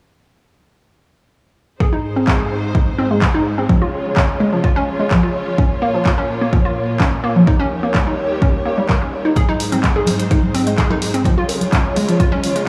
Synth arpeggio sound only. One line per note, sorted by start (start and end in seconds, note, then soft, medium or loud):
1.80 1.85 G#4 loud
1.93 1.95 D#4 loud
2.16 2.21 C4 medium
2.28 2.35 G#3 medium
2.40 2.43 G#4 medium
2.75 2.80 D#4 medium
2.98 3.06 C4 loud
3.11 3.18 G#3 medium
3.22 3.27 G#4 loud
3.34 3.37 D#4 loud
3.58 3.63 C4 medium
3.69 3.77 F3 loud
3.82 3.84 F4 medium
4.17 4.22 C#4 medium
4.40 4.48 G#3 loud
4.53 4.59 F3 medium
4.64 4.69 F4 loud
4.76 4.79 C#4 loud
5.00 5.04 G#3 medium
5.11 5.18 F3 loud
5.23 5.26 F4 medium
5.58 5.63 C#4 medium
5.82 5.89 A#3 loud
5.94 6.01 F3 medium
6.06 6.10 F4 medium
6.18 6.21 C#4 loud
6.41 6.46 A#3 medium
6.53 6.60 F3 medium
6.65 6.68 F4 medium
7.00 7.05 C#4 medium
7.24 7.31 A#3 medium
7.36 7.43 F3 medium
7.47 7.52 D#4 medium
7.60 7.62 C#4 loud
7.83 7.88 A#3 medium
7.95 8.02 G3 loud
8.07 8.10 D#4 medium
8.42 8.47 C#4 medium
8.65 8.70 A#3 medium
8.78 8.81 G3 medium
8.89 8.94 A#4 medium
9.01 9.04 C#4 medium
9.25 9.30 D#4 medium
9.36 9.41 G#4 loud
9.49 9.51 D#4 loud
9.72 9.77 C4 medium
9.84 9.91 G#3 loud
9.96 9.99 G#4 medium
10.31 10.36 D#4 medium
10.54 10.62 C4 loud
10.67 10.74 G#3 medium
10.78 10.83 G#4 loud
10.90 10.93 D#4 loud
11.14 11.19 C4 medium
11.25 11.33 F3 loud
11.38 11.40 F4 medium
11.73 11.77 C#4 medium
11.96 12.04 G#3 loud
12.08 12.15 F3 medium
12.20 12.25 F4 medium
12.32 12.35 C#4 loud
12.56 12.60 G#3 medium